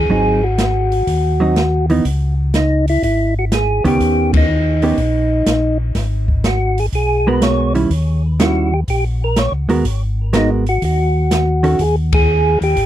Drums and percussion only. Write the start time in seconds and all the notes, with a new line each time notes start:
0.58 snare, closed hi-hat
0.92 open hi-hat
1.07 kick, open hi-hat
1.56 snare, closed hi-hat
1.90 open hi-hat
2.05 kick, open hi-hat
2.54 snare, closed hi-hat
2.88 open hi-hat
3.03 kick, open hi-hat
3.52 snare, closed hi-hat
3.85 kick, open hi-hat
4.00 kick, open hi-hat
4.33 kick, ride
4.82 open hi-hat
4.97 kick, open hi-hat
5.47 snare, closed hi-hat
5.95 kick, snare, open hi-hat
6.28 kick
6.44 snare, closed hi-hat
6.78 open hi-hat
6.92 kick, open hi-hat
7.42 snare, closed hi-hat
7.75 open hi-hat
7.90 kick, open hi-hat
8.40 snare, closed hi-hat
8.88 kick, open hi-hat
9.36 snare, closed hi-hat
9.69 open hi-hat
9.85 kick, open hi-hat
10.33 snare, closed hi-hat
10.67 open hi-hat
10.82 kick, open hi-hat
11.31 snare, closed hi-hat
11.64 open hi-hat
11.79 kick, open hi-hat
12.12 kick, ride
12.62 open hi-hat
12.77 kick, open hi-hat